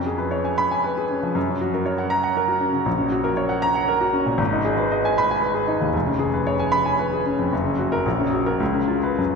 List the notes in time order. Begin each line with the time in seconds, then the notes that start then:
Already playing: F2 C#4
0.07 G#4
0.18 B4
0.31 C#5
0.44 G#5
0.58 B5
0.71 G#5
0.84 B4
0.98 G#4
1.10 C#4
1.23 F3
1.35 F#2
1.49 C#4
1.61 F#4
1.74 A#4
1.85 C#5
1.98 F#5
2.10 A#5
2.24 F#5
2.37 A#4
2.48 F#4
2.60 C#4
2.72 C#3
2.86 A#1
2.98 C#4
3.12 F#4
3.24 A#4
3.37 C#5
3.49 F#5
3.62 A#5
3.75 F#5
3.88 A#4
4.01 F#4
4.13 C#4
4.26 A#2
4.38 G#1
4.53 D#4
4.65 G#4
4.77 B4
4.92 D#5
5.05 G#5
5.18 B5
5.31 G#5
5.42 B4
5.54 G#4
5.68 D#4
5.81 D#2
5.93 F1
6.07 C#4
6.19 G#4
6.34 B4
6.47 C#5
6.59 G#5
6.72 B5
6.86 G#5
6.99 B4
7.13 G#4
7.26 C#4
7.39 F2
7.53 F#1
7.66 C#4
7.79 F#4
7.92 A#4
8.06 A#1
8.19 C#4
8.33 F#4
8.46 A#4
8.60 C#2
8.74 C#4
8.88 F4
9.03 B4
9.18 F#2